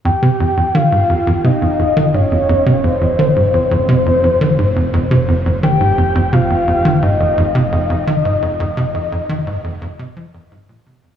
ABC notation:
X:1
M:4/4
L:1/16
Q:1/4=86
K:Fm
V:1 name="Soft synth lead"
g4 f4 e4 d4 | c4 c8- c2 z2 | g4 f4 e8- | e12 z4 |]
V:2 name="Analog synth bass" clef=bass
F,, C, F,, F,, E, A,, F,, F,, C, F,, F,, E, A,, F,, F,, C, | F,, F,, E, A,, F,, F,, C, F,, F,, E, A,, F,, F,, C, F,, F,, | E, A,, F,, F,, C, F,, F,, E, A,, F,, F,, C, F,, F,, E, A,, | F,, F,, C, F,, F,, E, A,, F,, F,, C, F, F,, A,, B,, C, F,, |]
V:3 name="Analog synth bass" clef=bass
F,,,16- | F,,,16- | F,,,16- | F,,,16 |]